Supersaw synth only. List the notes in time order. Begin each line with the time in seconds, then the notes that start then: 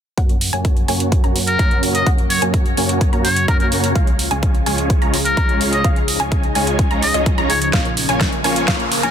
0.18 A#3 C#4 F#4 C#5 F#5
0.53 A#3 C#4 F#4 C#5 G#5
0.88 A#3 C#4 F#4 C#5 G#5
1.24 A#3 C#4 F#4 C#5 A#5
1.59 A#3 C#4 F#4 C#5 A#5
2.07 A#3 F#4 F#5
2.42 A#3 C#4 F#4 C#5 G#5
2.77 A#3 C#4 F#4 C#5 G#5
3.13 A#3 C#4 F#4 C#5 A#5
3.48 A#3 C#4 F#4 C#5
3.96 G#3 C#4 F4 C#5
4.31 G#3 C#4 F4 C#5 G#5
4.66 G#3 C#4 F4 C#5 G#5
5.02 G#3 C#4 F4 C#5 A#5
5.37 G#3 C#4 F4 C#5 A#5
5.85 G#3 C#4 F4 F5
6.20 G#3 C#4 F4 C#5 G#5
6.55 G#3 C#4 F4 C#5 G#5
6.91 G#3 C#4 F4 C#5 A#5
7.14 G#3 C#4 F4 C#5 D#5
7.38 G#3 C#4 F4 C#5 A#5
7.74 A#3 C#4 F4 C#5 F5
8.09 A#3 C#4 F4 C#5 G#5
8.44 A#3 C#4 F4 C#5 G#5
8.68 A#3
9.03 A#3 C#4 F4 C#5 G#5